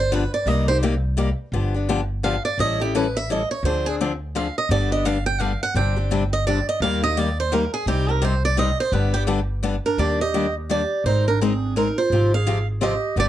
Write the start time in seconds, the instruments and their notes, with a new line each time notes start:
Already playing: upright bass G1
0.00 steel-string acoustic guitar C5
0.12 steel-string acoustic guitar D3 F3 B3 D4 G4 B4
0.34 steel-string acoustic guitar D5
0.46 upright bass C2, steel-string acoustic guitar C3 G3 A#3 D#4 G4 D#5
0.68 steel-string acoustic guitar A#3 D#4 G4 C5
0.83 steel-string acoustic guitar C3 G3 A#3 D#4 G4
1.17 steel-string acoustic guitar C3 G3 A#3 D#4 G4
1.52 upright bass G1, steel-string acoustic guitar D3 F3 B3 D4 G4
1.74 steel-string acoustic guitar B3 D4 G4
1.89 steel-string acoustic guitar D3 F3 B3 D4 G4
2.23 steel-string acoustic guitar D3 F3 B3 D4 G4 F5
2.45 steel-string acoustic guitar D5
2.58 upright bass A1, steel-string acoustic guitar E3 G3 C#4 E4 A4 D#5
2.80 steel-string acoustic guitar C#4 E4 G4 A4
2.95 steel-string acoustic guitar E3 G3 C#4 E4 A4 B4
3.17 steel-string acoustic guitar E5
3.30 steel-string acoustic guitar E3 G3 C#4 E4 A4 D#5
3.51 steel-string acoustic guitar C#5
3.63 upright bass D2, steel-string acoustic guitar D3 F3 C4 D4 G#4 C5
3.86 steel-string acoustic guitar C4 D4 G#4
4.01 steel-string acoustic guitar D3 F3 C4 D4 G#4
4.35 steel-string acoustic guitar D3 F3 C4 D4 G#4 F5
4.58 steel-string acoustic guitar D#5
4.69 upright bass G1, steel-string acoustic guitar D3 G3 B3 D4 G4 D5
4.91 steel-string acoustic guitar B3 D4 G4 D#5
5.05 steel-string acoustic guitar D3 G3 B3 D4 G4 F5
5.26 steel-string acoustic guitar G5
5.40 steel-string acoustic guitar D3 G3 B3 D4 G4 F5
5.63 steel-string acoustic guitar F#5
5.75 upright bass G1, steel-string acoustic guitar C3 G3 C4 D4 G4 G5
5.96 steel-string acoustic guitar C4 D4 G4
6.11 steel-string acoustic guitar C3 G3 C4 D4 G4
6.33 steel-string acoustic guitar D#5
6.47 steel-string acoustic guitar C3 G3 C4 D4 G4 D5
6.69 steel-string acoustic guitar D#5
6.80 upright bass D#2, steel-string acoustic guitar D#3 G3 A#3 D#4 G4 F5
7.03 steel-string acoustic guitar A#3 D#4 G4 D#5
7.17 steel-string acoustic guitar D#3 G3 A#3 D#4 G4 D5
7.40 steel-string acoustic guitar C5
7.52 steel-string acoustic guitar D#3 G3 A#3 D#4 G4 A#4
7.74 steel-string acoustic guitar G#4
7.86 upright bass C2, steel-string acoustic guitar C3 G3 C4 D#4 G4
8.08 steel-string acoustic guitar C4 D#4 G4 A#4
8.22 steel-string acoustic guitar C3 G3 C4 D#4 G4 C5
8.45 steel-string acoustic guitar D5
8.57 steel-string acoustic guitar C3 G3 C4 D#4 G4 D#5
8.80 steel-string acoustic guitar C5
8.92 upright bass G1, steel-string acoustic guitar D3 G3 B3 D4 G4 B4
9.14 steel-string acoustic guitar B3 D4 G4
9.27 steel-string acoustic guitar D3 G3 B3 D4 G4
9.63 steel-string acoustic guitar D3 G3 B3 D4 G4
9.86 clarinet D4, steel-string acoustic guitar A#4
9.98 upright bass D#2, steel-string acoustic guitar D#3 G3 A#3 D4 G4 D5, clarinet G4
10.21 clarinet G4, steel-string acoustic guitar D#5
10.34 steel-string acoustic guitar D#3 G3 A#3 D4 G4
10.69 steel-string acoustic guitar D#3 G3 A#3 D4 G4 D5, clarinet G4
11.04 upright bass G#1, steel-string acoustic guitar G#3 C4 D#4 A#4 C5, clarinet D#4
11.28 clarinet D4, steel-string acoustic guitar A#4
11.41 steel-string acoustic guitar G#3 C4 D#4 G#4 A#4, clarinet C4
11.76 steel-string acoustic guitar G#3 C4 D#4 A#4, clarinet D#4
11.98 clarinet F4, steel-string acoustic guitar C5
12.10 upright bass G#1, steel-string acoustic guitar C3 F3 C4 F4 G4
12.34 clarinet G#4, steel-string acoustic guitar F5
12.46 steel-string acoustic guitar C3 F3 C4 F4 G4
12.81 steel-string acoustic guitar C3 F3 C4 F4 G4 D#5, clarinet G4
13.16 upright bass G1, steel-string acoustic guitar D3 G3 B3 D4 G4 D5, clarinet G4